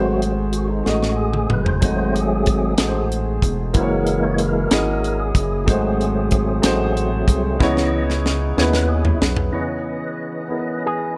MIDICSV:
0, 0, Header, 1, 7, 480
1, 0, Start_track
1, 0, Key_signature, 4, "minor"
1, 0, Tempo, 642398
1, 1368, Time_signature, 6, 3, 24, 8
1, 8348, End_track
2, 0, Start_track
2, 0, Title_t, "Clean electric guitar"
2, 0, Program_c, 0, 27
2, 8117, Note_on_c, 0, 68, 61
2, 8338, Note_off_c, 0, 68, 0
2, 8348, End_track
3, 0, Start_track
3, 0, Title_t, "Grand piano"
3, 0, Program_c, 1, 0
3, 0, Note_on_c, 1, 44, 61
3, 0, Note_on_c, 1, 57, 70
3, 0, Note_on_c, 1, 63, 62
3, 0, Note_on_c, 1, 66, 63
3, 0, Note_on_c, 1, 68, 64
3, 0, Note_on_c, 1, 72, 76
3, 61, Control_c, 1, 64, 127
3, 583, Note_off_c, 1, 57, 0
3, 586, Note_off_c, 1, 63, 0
3, 591, Note_off_c, 1, 66, 0
3, 593, Note_off_c, 1, 68, 0
3, 619, Note_off_c, 1, 44, 0
3, 621, Note_off_c, 1, 72, 0
3, 639, Note_on_c, 1, 57, 66
3, 643, Note_on_c, 1, 63, 57
3, 653, Note_on_c, 1, 66, 58
3, 655, Note_on_c, 1, 68, 60
3, 666, Note_on_c, 1, 75, 73
3, 1303, Note_off_c, 1, 57, 0
3, 1305, Note_off_c, 1, 63, 0
3, 1310, Note_off_c, 1, 66, 0
3, 1311, Note_off_c, 1, 68, 0
3, 1317, Note_off_c, 1, 75, 0
3, 1349, Note_on_c, 1, 57, 71
3, 1360, Note_on_c, 1, 63, 69
3, 1364, Note_on_c, 1, 44, 56
3, 1365, Note_on_c, 1, 66, 61
3, 1371, Note_on_c, 1, 68, 68
3, 1379, Note_on_c, 1, 75, 73
3, 2018, Note_off_c, 1, 57, 0
3, 2023, Note_off_c, 1, 63, 0
3, 2026, Note_off_c, 1, 66, 0
3, 2029, Note_off_c, 1, 68, 0
3, 2033, Note_off_c, 1, 75, 0
3, 2056, Note_off_c, 1, 44, 0
3, 2082, Note_on_c, 1, 57, 64
3, 2086, Note_on_c, 1, 63, 57
3, 2087, Note_on_c, 1, 66, 57
3, 2098, Note_on_c, 1, 68, 60
3, 2101, Note_on_c, 1, 69, 57
3, 2143, Note_off_c, 1, 69, 0
3, 2152, Note_on_c, 1, 72, 75
3, 2744, Note_off_c, 1, 57, 0
3, 2746, Note_off_c, 1, 63, 0
3, 2746, Note_off_c, 1, 66, 0
3, 2752, Note_off_c, 1, 68, 0
3, 2779, Note_off_c, 1, 72, 0
3, 2790, Note_on_c, 1, 58, 74
3, 2794, Note_on_c, 1, 64, 69
3, 2804, Note_on_c, 1, 66, 66
3, 2807, Note_on_c, 1, 68, 67
3, 2814, Note_on_c, 1, 72, 64
3, 2817, Control_c, 1, 64, 0
3, 2858, Note_on_c, 1, 73, 82
3, 2859, Note_off_c, 1, 72, 0
3, 2938, Control_c, 1, 64, 127
3, 3457, Note_off_c, 1, 58, 0
3, 3459, Note_off_c, 1, 64, 0
3, 3464, Note_off_c, 1, 66, 0
3, 3466, Note_off_c, 1, 68, 0
3, 3492, Note_off_c, 1, 73, 0
3, 3501, Note_on_c, 1, 58, 64
3, 3517, Note_on_c, 1, 64, 62
3, 3519, Note_on_c, 1, 66, 66
3, 3523, Note_on_c, 1, 68, 65
3, 3534, Note_on_c, 1, 75, 80
3, 4173, Note_off_c, 1, 58, 0
3, 4180, Note_off_c, 1, 64, 0
3, 4182, Note_off_c, 1, 66, 0
3, 4183, Note_off_c, 1, 68, 0
3, 4189, Note_off_c, 1, 75, 0
3, 4232, Note_on_c, 1, 57, 75
3, 4237, Note_on_c, 1, 63, 75
3, 4243, Note_on_c, 1, 44, 64
3, 4244, Note_on_c, 1, 66, 67
3, 4252, Note_on_c, 1, 68, 70
3, 4256, Control_c, 1, 64, 0
3, 4258, Note_on_c, 1, 72, 82
3, 4383, Control_c, 1, 64, 127
3, 4898, Note_off_c, 1, 57, 0
3, 4900, Note_off_c, 1, 63, 0
3, 4904, Note_off_c, 1, 66, 0
3, 4908, Note_off_c, 1, 68, 0
3, 4911, Note_off_c, 1, 72, 0
3, 4934, Note_off_c, 1, 44, 0
3, 4947, Note_on_c, 1, 57, 83
3, 4952, Note_on_c, 1, 63, 81
3, 4960, Note_on_c, 1, 66, 74
3, 4969, Note_on_c, 1, 68, 78
3, 4974, Note_on_c, 1, 72, 93
3, 5615, Note_off_c, 1, 57, 0
3, 5618, Note_off_c, 1, 63, 0
3, 5622, Note_off_c, 1, 66, 0
3, 5626, Note_off_c, 1, 68, 0
3, 5628, Note_off_c, 1, 72, 0
3, 5674, Note_on_c, 1, 59, 86
3, 5678, Note_on_c, 1, 63, 83
3, 5683, Note_on_c, 1, 64, 85
3, 5687, Note_on_c, 1, 49, 71
3, 5689, Note_on_c, 1, 68, 79
3, 5694, Control_c, 1, 64, 0
3, 5701, Note_on_c, 1, 73, 107
3, 5802, Control_c, 1, 64, 127
3, 6339, Note_off_c, 1, 59, 0
3, 6341, Note_off_c, 1, 63, 0
3, 6343, Note_off_c, 1, 64, 0
3, 6346, Note_off_c, 1, 68, 0
3, 6352, Note_off_c, 1, 73, 0
3, 6376, Note_off_c, 1, 49, 0
3, 6399, Note_on_c, 1, 59, 72
3, 6413, Note_on_c, 1, 63, 66
3, 6417, Note_on_c, 1, 64, 68
3, 6425, Note_on_c, 1, 68, 67
3, 6432, Note_on_c, 1, 71, 82
3, 7062, Note_off_c, 1, 59, 0
3, 7069, Note_off_c, 1, 63, 0
3, 7071, Note_off_c, 1, 64, 0
3, 7075, Note_off_c, 1, 68, 0
3, 7078, Note_off_c, 1, 71, 0
3, 7106, Note_on_c, 1, 59, 59
3, 7108, Note_on_c, 1, 63, 57
3, 7118, Note_on_c, 1, 64, 55
3, 7121, Note_on_c, 1, 49, 50
3, 7123, Note_on_c, 1, 68, 59
3, 7128, Note_on_c, 1, 73, 66
3, 7136, Control_c, 1, 64, 0
3, 7275, Control_c, 1, 64, 127
3, 7776, Note_off_c, 1, 59, 0
3, 7777, Note_off_c, 1, 63, 0
3, 7782, Note_off_c, 1, 64, 0
3, 7784, Note_off_c, 1, 68, 0
3, 7787, Note_off_c, 1, 73, 0
3, 7814, Note_off_c, 1, 49, 0
3, 7831, Note_on_c, 1, 59, 62
3, 7833, Note_on_c, 1, 63, 53
3, 7846, Note_on_c, 1, 64, 51
3, 7847, Note_on_c, 1, 68, 53
3, 7858, Note_on_c, 1, 70, 52
3, 7901, Note_off_c, 1, 70, 0
3, 7902, Note_on_c, 1, 71, 59
3, 8348, Note_off_c, 1, 59, 0
3, 8348, Note_off_c, 1, 63, 0
3, 8348, Note_off_c, 1, 64, 0
3, 8348, Note_off_c, 1, 68, 0
3, 8348, Note_off_c, 1, 71, 0
3, 8348, End_track
4, 0, Start_track
4, 0, Title_t, "Tonewheel organ"
4, 0, Program_c, 2, 16
4, 0, Note_on_c, 2, 54, 50
4, 0, Note_on_c, 2, 57, 45
4, 0, Note_on_c, 2, 60, 54
4, 0, Note_on_c, 2, 66, 71
4, 155, Note_off_c, 2, 66, 0
4, 243, Note_off_c, 2, 54, 0
4, 244, Note_off_c, 2, 57, 0
4, 249, Note_off_c, 2, 60, 0
4, 391, Note_on_c, 2, 66, 70
4, 508, Note_on_c, 2, 63, 69
4, 511, Note_off_c, 2, 66, 0
4, 625, Note_on_c, 2, 66, 82
4, 642, Note_off_c, 2, 63, 0
4, 859, Note_off_c, 2, 66, 0
4, 868, Note_on_c, 2, 68, 77
4, 1120, Note_on_c, 2, 71, 84
4, 1126, Note_off_c, 2, 68, 0
4, 1231, Note_on_c, 2, 72, 79
4, 1248, Note_off_c, 2, 71, 0
4, 1352, Note_off_c, 2, 72, 0
4, 1354, Note_on_c, 2, 54, 45
4, 1358, Note_on_c, 2, 57, 42
4, 1361, Note_on_c, 2, 72, 84
4, 1363, Note_on_c, 2, 60, 54
4, 1602, Note_on_c, 2, 68, 87
4, 1612, Note_off_c, 2, 72, 0
4, 2051, Note_off_c, 2, 54, 0
4, 2053, Note_off_c, 2, 57, 0
4, 2055, Note_off_c, 2, 60, 0
4, 2295, Note_off_c, 2, 68, 0
4, 2793, Note_on_c, 2, 52, 46
4, 2801, Note_on_c, 2, 56, 43
4, 2804, Note_on_c, 2, 58, 52
4, 2806, Note_on_c, 2, 70, 78
4, 3158, Note_on_c, 2, 73, 93
4, 3177, Note_off_c, 2, 70, 0
4, 3283, Note_on_c, 2, 70, 86
4, 3286, Note_off_c, 2, 73, 0
4, 3489, Note_off_c, 2, 52, 0
4, 3494, Note_off_c, 2, 56, 0
4, 3495, Note_off_c, 2, 58, 0
4, 3882, Note_on_c, 2, 68, 84
4, 3902, Note_off_c, 2, 70, 0
4, 3995, Note_off_c, 2, 68, 0
4, 4015, Note_on_c, 2, 68, 71
4, 4214, Note_on_c, 2, 54, 50
4, 4220, Note_on_c, 2, 57, 46
4, 4227, Note_on_c, 2, 60, 55
4, 5179, Note_off_c, 2, 68, 0
4, 5430, Note_off_c, 2, 54, 0
4, 5434, Note_off_c, 2, 60, 0
4, 5436, Note_off_c, 2, 57, 0
4, 5439, Note_on_c, 2, 54, 47
4, 5443, Note_on_c, 2, 60, 52
4, 5445, Note_on_c, 2, 57, 43
4, 5657, Note_off_c, 2, 54, 0
4, 5660, Note_off_c, 2, 60, 0
4, 5661, Note_off_c, 2, 57, 0
4, 5674, Note_on_c, 2, 59, 47
4, 5678, Note_on_c, 2, 52, 50
4, 5682, Note_on_c, 2, 75, 57
4, 5998, Note_off_c, 2, 59, 0
4, 6000, Note_off_c, 2, 52, 0
4, 6003, Note_off_c, 2, 75, 0
4, 6412, Note_on_c, 2, 73, 102
4, 6464, Note_off_c, 2, 73, 0
4, 6524, Note_on_c, 2, 71, 103
4, 6636, Note_on_c, 2, 68, 84
4, 6648, Note_off_c, 2, 71, 0
4, 6757, Note_on_c, 2, 64, 71
4, 6764, Note_off_c, 2, 68, 0
4, 6867, Note_off_c, 2, 64, 0
4, 7116, Note_on_c, 2, 61, 43
4, 7117, Note_on_c, 2, 75, 44
4, 7118, Note_on_c, 2, 52, 47
4, 7120, Note_on_c, 2, 71, 57
4, 8348, Note_off_c, 2, 52, 0
4, 8348, Note_off_c, 2, 61, 0
4, 8348, Note_off_c, 2, 71, 0
4, 8348, Note_off_c, 2, 75, 0
4, 8348, End_track
5, 0, Start_track
5, 0, Title_t, "French horn section"
5, 0, Program_c, 3, 60
5, 0, Note_on_c, 3, 57, 68
5, 0, Note_on_c, 3, 60, 65
5, 0, Note_on_c, 3, 66, 64
5, 0, Note_on_c, 3, 68, 80
5, 2773, Note_off_c, 3, 60, 0
5, 2780, Note_off_c, 3, 57, 0
5, 2786, Note_on_c, 3, 58, 75
5, 2789, Note_on_c, 3, 64, 66
5, 4221, Note_off_c, 3, 58, 0
5, 4222, Note_off_c, 3, 64, 0
5, 4242, Note_on_c, 3, 60, 64
5, 4244, Note_on_c, 3, 57, 73
5, 5653, Note_off_c, 3, 68, 0
5, 5655, Note_off_c, 3, 66, 0
5, 5662, Note_on_c, 3, 61, 64
5, 5663, Note_on_c, 3, 49, 70
5, 5663, Note_on_c, 3, 75, 84
5, 5666, Note_on_c, 3, 59, 62
5, 5668, Note_off_c, 3, 60, 0
5, 5669, Note_off_c, 3, 57, 0
5, 6995, Note_off_c, 3, 49, 0
5, 6995, Note_off_c, 3, 59, 0
5, 6995, Note_off_c, 3, 61, 0
5, 6995, Note_off_c, 3, 75, 0
5, 7122, Note_on_c, 3, 52, 47
5, 7127, Note_on_c, 3, 75, 51
5, 7128, Note_on_c, 3, 59, 45
5, 7130, Note_on_c, 3, 73, 46
5, 8348, Note_off_c, 3, 52, 0
5, 8348, Note_off_c, 3, 59, 0
5, 8348, Note_off_c, 3, 73, 0
5, 8348, Note_off_c, 3, 75, 0
5, 8348, End_track
6, 0, Start_track
6, 0, Title_t, "Analog synth bass"
6, 0, Program_c, 4, 38
6, 0, Note_on_c, 4, 32, 91
6, 616, Note_off_c, 4, 32, 0
6, 648, Note_on_c, 4, 33, 86
6, 1098, Note_off_c, 4, 33, 0
6, 1124, Note_on_c, 4, 30, 82
6, 1347, Note_off_c, 4, 30, 0
6, 1364, Note_on_c, 4, 32, 89
6, 2056, Note_off_c, 4, 32, 0
6, 2086, Note_on_c, 4, 33, 92
6, 2537, Note_off_c, 4, 33, 0
6, 2560, Note_on_c, 4, 28, 93
6, 2784, Note_off_c, 4, 28, 0
6, 2799, Note_on_c, 4, 30, 93
6, 3492, Note_off_c, 4, 30, 0
6, 3525, Note_on_c, 4, 32, 89
6, 3975, Note_off_c, 4, 32, 0
6, 3996, Note_on_c, 4, 30, 90
6, 4242, Note_on_c, 4, 32, 86
6, 4254, Note_off_c, 4, 30, 0
6, 4933, Note_off_c, 4, 32, 0
6, 4962, Note_on_c, 4, 33, 93
6, 5413, Note_off_c, 4, 33, 0
6, 5439, Note_on_c, 4, 36, 84
6, 5662, Note_off_c, 4, 36, 0
6, 5682, Note_on_c, 4, 37, 80
6, 6373, Note_off_c, 4, 37, 0
6, 6409, Note_on_c, 4, 39, 89
6, 6857, Note_off_c, 4, 39, 0
6, 6887, Note_on_c, 4, 35, 92
6, 7107, Note_off_c, 4, 35, 0
6, 8348, End_track
7, 0, Start_track
7, 0, Title_t, "Drums"
7, 163, Note_on_c, 9, 42, 48
7, 238, Note_off_c, 9, 42, 0
7, 392, Note_on_c, 9, 42, 53
7, 467, Note_off_c, 9, 42, 0
7, 644, Note_on_c, 9, 38, 56
7, 718, Note_off_c, 9, 38, 0
7, 766, Note_on_c, 9, 38, 52
7, 841, Note_off_c, 9, 38, 0
7, 997, Note_on_c, 9, 47, 57
7, 1072, Note_off_c, 9, 47, 0
7, 1119, Note_on_c, 9, 45, 89
7, 1194, Note_off_c, 9, 45, 0
7, 1241, Note_on_c, 9, 43, 84
7, 1316, Note_off_c, 9, 43, 0
7, 1358, Note_on_c, 9, 42, 72
7, 1364, Note_on_c, 9, 36, 96
7, 1432, Note_off_c, 9, 42, 0
7, 1439, Note_off_c, 9, 36, 0
7, 1610, Note_on_c, 9, 42, 48
7, 1684, Note_off_c, 9, 42, 0
7, 1837, Note_on_c, 9, 42, 60
7, 1846, Note_on_c, 9, 36, 75
7, 1911, Note_off_c, 9, 42, 0
7, 1921, Note_off_c, 9, 36, 0
7, 2073, Note_on_c, 9, 42, 86
7, 2078, Note_on_c, 9, 38, 115
7, 2147, Note_off_c, 9, 42, 0
7, 2153, Note_off_c, 9, 38, 0
7, 2327, Note_on_c, 9, 42, 46
7, 2402, Note_off_c, 9, 42, 0
7, 2558, Note_on_c, 9, 36, 77
7, 2563, Note_on_c, 9, 42, 60
7, 2633, Note_off_c, 9, 36, 0
7, 2638, Note_off_c, 9, 42, 0
7, 2793, Note_on_c, 9, 42, 71
7, 2800, Note_on_c, 9, 36, 101
7, 2868, Note_off_c, 9, 42, 0
7, 2875, Note_off_c, 9, 36, 0
7, 3036, Note_on_c, 9, 42, 47
7, 3110, Note_off_c, 9, 42, 0
7, 3273, Note_on_c, 9, 42, 59
7, 3348, Note_off_c, 9, 42, 0
7, 3517, Note_on_c, 9, 42, 88
7, 3522, Note_on_c, 9, 38, 101
7, 3591, Note_off_c, 9, 42, 0
7, 3597, Note_off_c, 9, 38, 0
7, 3766, Note_on_c, 9, 42, 42
7, 3840, Note_off_c, 9, 42, 0
7, 3996, Note_on_c, 9, 36, 85
7, 3998, Note_on_c, 9, 42, 61
7, 4071, Note_off_c, 9, 36, 0
7, 4073, Note_off_c, 9, 42, 0
7, 4242, Note_on_c, 9, 36, 100
7, 4248, Note_on_c, 9, 42, 71
7, 4317, Note_off_c, 9, 36, 0
7, 4323, Note_off_c, 9, 42, 0
7, 4487, Note_on_c, 9, 42, 46
7, 4562, Note_off_c, 9, 42, 0
7, 4712, Note_on_c, 9, 42, 62
7, 4722, Note_on_c, 9, 36, 73
7, 4787, Note_off_c, 9, 42, 0
7, 4797, Note_off_c, 9, 36, 0
7, 4954, Note_on_c, 9, 42, 92
7, 4960, Note_on_c, 9, 38, 109
7, 5029, Note_off_c, 9, 42, 0
7, 5035, Note_off_c, 9, 38, 0
7, 5205, Note_on_c, 9, 42, 43
7, 5280, Note_off_c, 9, 42, 0
7, 5437, Note_on_c, 9, 36, 80
7, 5441, Note_on_c, 9, 42, 66
7, 5512, Note_off_c, 9, 36, 0
7, 5516, Note_off_c, 9, 42, 0
7, 5682, Note_on_c, 9, 36, 96
7, 5689, Note_on_c, 9, 38, 50
7, 5757, Note_off_c, 9, 36, 0
7, 5763, Note_off_c, 9, 38, 0
7, 5807, Note_on_c, 9, 38, 56
7, 5881, Note_off_c, 9, 38, 0
7, 6051, Note_on_c, 9, 38, 51
7, 6126, Note_off_c, 9, 38, 0
7, 6171, Note_on_c, 9, 38, 72
7, 6245, Note_off_c, 9, 38, 0
7, 6412, Note_on_c, 9, 38, 79
7, 6487, Note_off_c, 9, 38, 0
7, 6526, Note_on_c, 9, 38, 74
7, 6601, Note_off_c, 9, 38, 0
7, 6760, Note_on_c, 9, 43, 76
7, 6835, Note_off_c, 9, 43, 0
7, 6888, Note_on_c, 9, 38, 96
7, 6962, Note_off_c, 9, 38, 0
7, 6998, Note_on_c, 9, 43, 89
7, 7072, Note_off_c, 9, 43, 0
7, 8348, End_track
0, 0, End_of_file